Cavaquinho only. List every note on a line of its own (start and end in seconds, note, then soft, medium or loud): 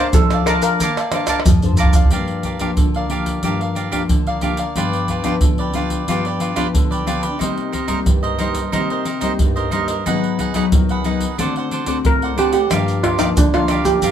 0.33 0.47 D5 soft
0.33 0.47 F5 soft
0.33 0.47 A5 soft
0.47 0.62 A#4 medium
0.47 0.63 D5 medium
0.47 0.62 F5 medium
0.47 0.61 A5 medium
0.62 0.79 D5 soft
0.62 0.79 F5 soft
0.62 0.78 A5 soft
0.81 0.96 A#4 medium
0.81 0.96 D5 medium
0.81 0.96 F5 medium
0.81 0.97 A5 medium
0.98 1.13 D5 soft
0.98 1.13 F5 soft
0.98 1.13 A5 soft
1.13 1.28 A#4 soft
1.13 1.28 D5 soft
1.13 1.28 F5 medium
1.13 1.28 A5 medium
1.29 1.38 A#4 medium
1.29 1.38 D5 medium
1.29 1.38 F5 medium
1.29 1.38 A5 medium
1.78 1.94 A#4 medium
1.78 1.94 D5 medium
1.78 1.94 F5 medium
1.78 1.92 A5 medium
1.93 2.11 D5 soft
1.93 2.10 F5 soft
1.93 2.10 A5 soft
2.12 2.43 G4 medium
2.12 2.44 A#4 medium
2.12 2.44 D5 medium
2.12 2.45 F5 medium
2.44 2.59 G4 soft
2.44 2.60 A#4 soft
2.44 2.60 D5 soft
2.44 2.60 F5 soft
2.60 2.70 G4 medium
2.60 2.70 A#4 medium
2.60 2.70 D5 medium
2.60 2.70 F5 medium
2.96 3.10 A#4 soft
2.96 3.10 D5 soft
2.96 3.10 F5 soft
3.10 3.42 G4 medium
3.10 3.43 A#4 medium
3.10 3.43 D5 medium
3.10 3.43 F5 medium
3.44 3.59 G4 medium
3.44 3.59 A#4 medium
3.44 3.60 D5 medium
3.44 3.60 F5 medium
3.61 3.75 A#4 soft
3.61 3.75 D5 soft
3.61 3.76 F5 soft
3.75 3.91 G4 soft
3.75 3.90 A#4 soft
3.75 3.91 D5 soft
3.75 3.91 F5 soft
3.92 4.02 G4 soft
3.92 4.02 A#4 medium
3.92 4.02 D5 medium
3.92 4.02 F5 medium
4.27 4.41 A#4 soft
4.27 4.43 D5 soft
4.27 4.42 F5 soft
4.42 4.58 G4 medium
4.42 4.58 A#4 medium
4.42 4.58 D5 medium
4.42 4.57 F5 medium
4.59 4.75 A#4 soft
4.59 4.75 D5 soft
4.59 4.75 F5 soft
4.76 5.08 F4 soft
4.76 5.08 G4 medium
4.76 5.09 B4 medium
4.76 5.09 D5 medium
5.09 5.23 F4 soft
5.09 5.24 G4 soft
5.09 5.25 B4 soft
5.09 5.25 D5 soft
5.24 5.34 F4 medium
5.24 5.35 G4 medium
5.24 5.35 B4 medium
5.24 5.35 D5 medium
5.59 5.74 G4 soft
5.59 5.75 B4 soft
5.59 5.74 D5 soft
5.75 6.07 F4 medium
5.75 6.08 G4 medium
5.75 6.08 B4 soft
5.75 6.08 D5 medium
6.09 6.24 F4 medium
6.09 6.24 G4 medium
6.09 6.25 B4 medium
6.09 6.25 D5 medium
6.26 6.39 G4 soft
6.26 6.40 B4 soft
6.26 6.40 D5 soft
6.41 6.55 F4 soft
6.41 6.55 G4 soft
6.41 6.55 B4 soft
6.41 6.56 D5 soft
6.56 6.66 F4 medium
6.56 6.66 G4 medium
6.56 6.67 B4 medium
6.56 6.67 D5 medium
6.91 7.06 G4 soft
6.91 7.06 B4 soft
6.91 7.06 D5 soft
7.07 7.23 F4 medium
7.07 7.23 G4 medium
7.07 7.22 B4 medium
7.07 7.21 D5 medium
7.23 7.39 G4 soft
7.23 7.39 B4 soft
7.23 7.39 D5 soft
7.39 7.71 D#4 medium
7.39 7.71 A#4 medium
7.39 7.72 C5 medium
7.39 7.72 D#5 medium
7.72 7.86 D#4 soft
7.72 7.87 A#4 soft
7.72 7.87 C5 soft
7.72 7.87 D#5 soft
7.88 7.98 D#4 medium
7.88 7.99 A#4 medium
7.88 7.99 C5 medium
7.88 7.99 D#5 medium
8.23 8.37 A#4 soft
8.23 8.38 C5 soft
8.23 8.39 D#5 soft
8.38 8.71 D#4 soft
8.38 8.71 A#4 soft
8.38 8.72 C5 medium
8.38 8.72 D#5 medium
8.72 8.88 D#4 medium
8.72 8.88 A#4 medium
8.72 8.89 C5 medium
8.72 8.89 D#5 medium
8.90 9.04 A#4 soft
8.90 9.05 C5 soft
8.90 9.05 D#5 soft
9.05 9.20 D#4 soft
9.05 9.20 A#4 soft
9.05 9.21 C5 soft
9.05 9.20 D#5 soft
9.21 9.31 D#4 medium
9.21 9.31 A#4 medium
9.21 9.32 C5 medium
9.21 9.32 D#5 medium
9.56 9.71 A#4 soft
9.56 9.71 C5 soft
9.56 9.71 D#5 soft
9.71 9.87 D#4 medium
9.71 9.88 A#4 medium
9.71 9.88 C5 medium
9.71 9.87 D#5 medium
9.88 10.05 A#4 soft
9.88 10.04 C5 soft
9.88 10.04 D#5 soft
10.06 10.37 D#4 medium
10.06 10.38 G#4 medium
10.06 10.38 B4 medium
10.06 10.39 F#5 medium
10.39 10.54 D#4 soft
10.39 10.54 G#4 soft
10.39 10.55 B4 soft
10.39 10.55 F#5 soft
10.55 10.64 D#4 medium
10.55 10.65 G#4 medium
10.55 10.65 B4 medium
10.55 10.65 F#5 medium
10.90 11.04 G#4 soft
10.90 11.05 B4 soft
10.90 11.05 F#5 soft
11.05 11.37 D#4 medium
11.05 11.37 G#4 medium
11.05 11.37 B4 medium
11.05 11.38 F#5 medium
11.38 11.53 D4 medium
11.38 11.54 C5 medium
11.38 11.54 D5 medium
11.38 11.54 F#5 medium
11.57 11.71 C5 soft
11.57 11.72 D5 soft
11.57 11.71 F#5 soft
11.72 11.86 D4 soft
11.72 11.86 C5 soft
11.72 11.86 D5 soft
11.72 11.87 F#5 soft
11.87 11.96 D4 medium
11.87 11.96 C5 medium
11.87 11.97 D5 medium
11.87 11.97 F#5 medium
12.23 12.36 C5 soft
12.23 12.37 D5 soft
12.23 12.37 F#5 soft
12.38 12.53 D4 medium
12.38 12.53 C5 medium
12.38 12.53 D5 medium
12.38 12.52 F#5 medium
12.53 12.69 C5 soft
12.53 12.69 D5 soft
12.53 12.69 F#5 soft
12.71 13.02 G4 medium
12.71 13.03 A#4 medium
12.71 13.03 D5 medium
12.71 13.03 F5 medium
13.03 13.17 G4 soft
13.03 13.18 A#4 soft
13.03 13.19 D5 soft
13.03 13.18 F5 soft
13.19 13.28 G4 medium
13.19 13.28 A#4 medium
13.19 13.29 D5 medium
13.19 13.29 F5 medium
13.54 13.70 A#4 soft
13.54 13.69 D5 soft
13.54 13.69 F5 soft
13.70 14.01 G4 medium
13.70 14.02 A#4 medium
13.70 14.02 D5 medium
13.70 14.02 F5 medium
14.03 14.11 G4 medium
14.03 14.11 A#4 medium
14.03 14.11 D5 medium
14.03 14.11 F5 medium